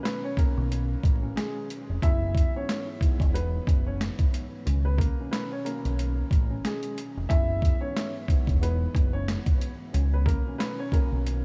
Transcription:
Already playing: B2 D#3 F#3 C#4
0.03 B3 B4, snare, closed hi-hat
0.24 C#4 C#5
0.36 B2 D#3 F#3 A#3 C#4 A#4, kick, closed hi-hat
0.57 B1
0.72 closed hi-hat
1.03 A1, kick, closed hi-hat
1.21 B2 D#3 F#3 C#4
1.36 G#3 G#4, snare, closed hi-hat
1.70 closed hi-hat
1.89 F1
2.02 F#1 G#2 E3 F#3 B3 E4 E5, kick, closed hi-hat
2.35 kick, closed hi-hat
2.54 G#2 E3 F#3 B3 C#4 C#5
2.69 snare, closed hi-hat
3.01 G#2 E3 F#3 B3, kick, closed hi-hat
3.20 E1, kick, closed hi-hat
3.32 G#2 E3 F#3 B3 B4, closed hi-hat
3.67 F#1, kick, closed hi-hat
3.87 C#4 C#5
4.01 snare, closed hi-hat
4.19 kick, closed hi-hat
4.31 G#2 E3 F#3 B3, closed hi-hat
4.64 C#2 B2 D#3 F#3 C#4, closed hi-hat
4.85 B3 B4
4.98 A#3 A#4, kick, closed hi-hat
5.19 B2 D#3 F#3 C#4
5.31 B3 B4, snare, closed hi-hat
5.52 C#4 C#5
5.64 B2 D#3 F#3 A#3 C#4 A#4, closed hi-hat
5.85 B1, closed hi-hat
5.99 closed hi-hat
6.31 A1, kick, closed hi-hat
6.48 B2 D#3 F#3 C#4
6.64 G#3 G#4, snare, closed hi-hat
6.83 closed hi-hat
6.98 closed hi-hat
7.17 F1
7.29 F#1 G#2 E3 F#3 B3 E4 E5, kick, closed hi-hat
7.62 kick, closed hi-hat
7.81 G#2 E3 F#3 B3 C#4 C#5
7.97 snare, closed hi-hat
8.28 G#2 E3 F#3 B3, kick, closed hi-hat
8.47 E1, kick, closed hi-hat
8.60 G#2 E3 F#3 B3 B4, closed hi-hat
8.95 F#1, kick, closed hi-hat
9.13 C#4 C#5
9.28 snare, closed hi-hat
9.46 kick, closed hi-hat
9.58 G#2 E3 F#3 B3, closed hi-hat
9.92 C#2 B2 D#3 F#3 C#4, closed hi-hat
10.14 B3 B4
10.25 A#3 A#4, kick, closed hi-hat
10.46 B2 D#3 F#3 C#4
10.58 B3 B4, snare, closed hi-hat
10.79 C#4 C#5
10.91 B2 D#3 F#3 A#3 C#4 A#4, kick, closed hi-hat
11.12 B1
11.27 closed hi-hat

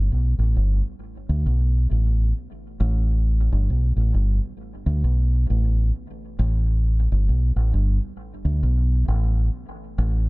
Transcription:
0.12 B1
0.39 A1
0.56 G1
1.29 D2
1.46 B1
1.91 A1
2.80 A1
3.52 G1
3.70 B1
3.96 A1
4.14 G1
4.86 D2
5.04 B1
5.50 A1
6.39 A1
7.12 G1
7.29 B1
7.56 A1
7.73 G1
8.45 D2
8.63 B1
9.08 A1
9.98 A1

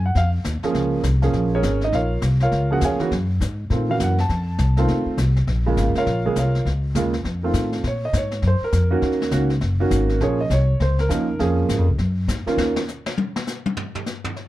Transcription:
Already playing: F#2
0.06 F#5
0.15 F2 F5, brush sweep, kick, snare
0.44 D#2, kick, snare, hi-hat pedal
0.62 F3 A#3 C#4 G#4, muted upright bass stroke, snare
0.74 C#2, brush sweep, kick, snare
1.03 C2, kick, snare, hi-hat pedal
1.22 F3 A#3 C#4 G#4, snare
1.33 A#1, brush sweep, kick, snare
1.55 C#4 G#4 A#4 C#5
1.63 G#1, kick, snare, hi-hat pedal
1.81 D#4 D#5, snare
1.92 A#1 F4 A#4 C#5 F5, brush sweep, kick, snare
2.22 C2, kick, snare, hi-hat pedal
2.40 F4 A#4 C#5 F5, snare
2.51 C#2, brush sweep, kick, snare
2.70 F3 A#3 C#4 F#4 G#4 F#5
2.81 D#2 G#4 F5 G#5, kick, snare, hi-hat pedal
2.85 C#5
2.99 E3 A#3 C#4 F#4, muted upright bass stroke, snare
3.11 F#2, brush sweep, kick, snare
3.40 G#2, kick, snare, hi-hat pedal
3.70 A#2 D#3 A3 C4 F4, brush sweep, kick, snare
3.89 E3 A#3 C#4 F#4 F5
3.99 F#2 F#5, kick, snare, hi-hat pedal
4.18 A5, snare
4.29 F2, brush sweep, kick, snare
4.58 C2, kick, snare, hi-hat pedal
4.77 D#3 A3 C4 F4, snare
4.88 D#2, brush sweep, kick, snare
5.06 muted upright bass stroke
5.17 C2, kick, snare, hi-hat pedal
5.36 snare
5.47 A#1, brush sweep, kick, snare
5.66 C#3 G#3 A#3 F4
5.77 G#1, kick, snare, hi-hat pedal
5.94 F4 A#4 C#5 F5, muted upright bass stroke, snare
6.06 A#1, brush sweep, kick, snare
6.25 C#3 G#3 A#3 G#4
6.35 C2 F4 A#4 C#5 F5, kick, snare, hi-hat pedal
6.55 snare
6.65 C#2, brush sweep, kick, snare
6.95 D#2 C#3 G#3 A#3 F4, kick, snare, hi-hat pedal
7.13 snare
7.24 F2, brush sweep, kick, snare
7.43 D#3 A3 C4 F4
7.53 A2, kick, snare, hi-hat pedal
7.72 snare
7.83 A#2, brush sweep, kick, snare
7.88 C#5
8.05 D#5
8.13 G#2, kick, snare, hi-hat pedal
8.18 C#5
8.31 snare
8.42 F#2, brush sweep, kick, snare
8.47 C5
8.61 A#4, muted upright bass stroke
8.72 F2, kick, snare, hi-hat pedal
8.91 D#3 A#3 C#4 F#4
9.02 D#2, brush sweep, kick, snare
9.12 snare
9.22 snare
9.31 C#2 D#3 A#3 C#4 F#4, kick, snare, hi-hat pedal
9.50 snare
9.61 F#1, brush sweep, kick, snare
9.80 D#3 A#3 C#4 F#4
9.91 G#1, kick, snare, hi-hat pedal
10.09 snare
10.20 A#1 F3 A#3 C#4 G#4 C#5, brush sweep, kick, snare
10.41 D#5
10.50 C2 C#5, kick, snare, hi-hat pedal
10.80 C#2 C5, brush sweep, kick, snare
10.99 A#4, snare
11.09 D#2 F3 A#3 C#4 D#4, kick, snare, hi-hat pedal
11.39 F2 F3 A#3 C#4 G#4, brush sweep, kick, snare
11.69 G#2, kick, snare, hi-hat pedal
11.78 F2
11.88 C#2
11.98 F#2, brush sweep, kick, snare
12.28 G#2, kick, snare, hi-hat pedal
12.46 D#3 A#3 C#4 F4, muted upright bass stroke, snare
12.57 D#2, snare
12.76 snare
12.88 snare, hi-hat pedal
13.06 snare
13.18 high tom
13.36 snare
13.47 snare, hi-hat pedal
13.66 high tom
13.77 floor tom
13.95 floor tom
14.06 snare, hi-hat pedal
14.24 floor tom
14.36 snare

